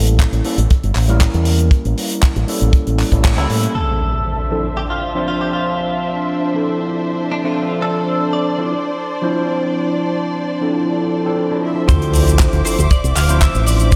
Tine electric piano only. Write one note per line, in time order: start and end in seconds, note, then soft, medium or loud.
0.00 0.41 G3 medium
0.00 0.42 A#3 medium
0.00 0.42 C#4 medium
0.00 0.42 E4 medium
0.00 0.42 A4 medium
0.44 0.58 G3 medium
0.44 0.58 A#3 medium
0.44 0.58 C#4 medium
0.44 0.59 E4 medium
0.44 0.59 A4 medium
1.08 2.45 G3 loud
1.08 2.45 A#3 medium
1.08 2.45 C#4 medium
1.08 2.45 E4 medium
1.08 2.46 A#4 loud
2.47 3.09 G3 medium
2.47 3.09 A#3 medium
2.47 3.10 C#4 medium
2.47 3.10 E4 medium
2.47 3.10 A4 medium
3.12 3.34 G3 medium
3.12 3.35 A#3 medium
3.12 3.35 C#4 medium
3.12 3.35 E4 medium
3.12 3.35 A4 medium
3.38 3.74 G3 medium
3.38 3.74 A#3 medium
3.38 3.74 C#4 medium
3.38 3.74 E4 medium
3.38 3.74 A4 medium
4.51 4.65 F3 medium
4.51 4.65 C4 medium
4.51 4.65 D4 medium
4.51 4.65 E4 medium
4.51 4.65 A4 medium
5.15 6.51 F3 medium
5.15 6.52 C4 medium
5.15 6.52 D4 medium
5.15 6.52 C5 medium
5.15 6.52 E5 medium
6.54 7.41 F3 medium
6.54 7.41 C4 medium
6.54 7.41 D4 medium
6.54 7.42 E4 medium
6.54 7.42 A4 medium
7.44 8.55 F3 medium
7.44 8.55 C4 medium
7.44 8.55 D4 medium
7.44 8.56 A4 medium
7.44 8.56 E5 medium
8.58 8.72 F3 medium
8.58 8.72 C4 medium
8.58 8.72 D4 medium
8.58 8.72 E4 medium
8.58 8.72 A4 medium
9.22 10.58 F3 medium
9.22 10.59 C4 medium
9.22 10.59 D4 medium
9.22 10.59 E4 medium
9.22 10.59 C5 loud
10.60 11.23 F3 medium
10.60 11.23 C4 medium
10.60 11.23 D4 medium
10.60 11.23 E4 medium
10.60 11.24 A4 medium
11.25 11.48 F3 medium
11.25 11.48 C4 medium
11.25 11.48 D4 medium
11.25 11.48 E4 medium
11.25 11.48 A4 medium
11.51 11.86 F3 medium
11.51 11.87 C4 medium
11.51 11.87 D4 medium
11.51 11.87 E4 medium
11.51 11.87 A4 medium
11.88 12.60 F3 loud
11.88 12.60 C4 medium
11.88 12.60 D4 medium
11.88 12.60 E4 medium
11.88 12.61 A4 loud
12.64 12.78 F3 medium
12.64 12.79 C4 medium
12.64 12.79 D4 medium
12.64 12.79 E4 medium
12.64 12.79 A4 medium
13.28 13.96 F3 medium
13.28 13.96 C4 medium
13.28 13.96 D4 medium
13.28 13.96 E4 medium
13.28 13.96 C5 loud